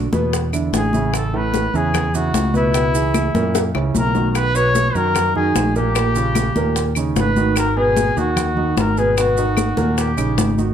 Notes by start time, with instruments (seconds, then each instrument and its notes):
0.13 fingered electric bass E2, grand piano B2 B3 B4, high bongo, high conga, maracas
0.33 high bongo, high conga, maracas
0.53 grand piano D3 D4 E4, high conga, claves, maracas
0.73 fingered electric bass A1, trumpet G#4, high bongo, low bongo, high conga, maracas
0.93 grand piano C#3 C#4 E4, high bongo, high conga, maracas
1.13 trumpet A4, high bongo, claves, maracas
1.34 grand piano A2 A3 A4, trumpet B4, high conga
1.54 high bongo, high conga, maracas
1.74 fingered electric bass E2, grand piano C#3 C#4 E4, trumpet G#4, high conga, maracas
1.94 high bongo, high conga, low conga, claves, maracas
2.14 grand piano C#3 C#4 E4, trumpet F#4, high conga, maracas
2.34 fingered electric bass C#2, high bongo, low bongo, high conga, maracas
2.54 grand piano B2 B3 B4, trumpet E4, high conga, maracas
2.74 grand piano B2 B3 B4, high bongo, claves, maracas
2.94 grand piano E3 E4 G#4, high bongo, high conga, maracas
3.14 high bongo, high conga, claves, maracas
3.34 fingered electric bass F#2, grand piano A#2 A#3 A#4, high bongo, high conga, maracas
3.55 high bongo, high conga, maracas
3.75 fingered electric bass C#2, grand piano C#3 C#4 E4, low bongo, high conga, claves
3.94 fingered electric bass B1, trumpet A#4, low bongo, high conga, maracas
4.14 grand piano D#3 D#4 F#4, low bongo, high conga, maracas
4.30 trumpet A#4
4.35 trumpet B4, high bongo, high conga, claves, maracas
4.55 grand piano B2 B3 B4, trumpet C#5, high conga, maracas
4.75 high bongo, high conga, maracas
4.95 fingered electric bass F#2, grand piano D#3 D#4 F#4, trumpet A#4, high conga, maracas
5.15 high bongo, high conga, low conga, claves, maracas
5.35 grand piano D#3 D#4 F#4, trumpet G#4, high conga, low conga
5.55 fingered electric bass A#1, high bongo, low bongo, high conga, maracas
5.76 grand piano A#2 A#3 A#4, trumpet G4, high conga, maracas
5.95 grand piano A#2 A#3 A#4, high bongo, high conga, claves, maracas
6.16 grand piano C#3 C#4 F4, high bongo, high conga, maracas
6.35 high bongo, high conga, claves, maracas
6.56 fingered electric bass D#2, grand piano A#2 A#3 A#4, high bongo, high conga, maracas
6.76 high bongo, high conga, maracas
6.95 grand piano C#3 C#4 D#4, high conga, claves, maracas
7.16 fingered electric bass G#1, trumpet B4, high bongo, low bongo, high conga, maracas
7.36 grand piano D#3 D#4 F#4, high bongo, high conga, maracas
7.56 trumpet A#4, high bongo, high conga, claves, maracas
7.77 grand piano B2 B3 B4, trumpet G#4, high conga
7.97 high bongo, high conga, maracas
8.16 fingered electric bass D#2, grand piano D#3 D#4 F#4, trumpet F#4, high conga, maracas
8.37 high bongo, high conga, low conga, claves, maracas
8.57 grand piano D#3 D#4 F#4, high conga, low conga
8.77 fingered electric bass G#1, trumpet A#4, high bongo, low bongo, high conga, maracas
8.97 grand piano B2 B3 B4, trumpet G#4, maracas
9.17 grand piano B2 B3 B4, trumpet F#4, high bongo, high conga, claves, maracas
9.37 grand piano D#3 D#4 F#4, high bongo, high conga, maracas
9.57 high bongo, high conga, claves, maracas
9.77 fingered electric bass D#2, grand piano A#2 A#3 A#4, high bongo, high conga, maracas
9.98 trumpet G4, high bongo, high conga, maracas
10.17 fingered electric bass A#1, grand piano C#3 C#4 D#4, high conga, claves, maracas
10.38 fingered electric bass G#1, high bongo, low bongo, high conga, maracas
10.58 grand piano D#3 D#4 F#4, high bongo, high conga, maracas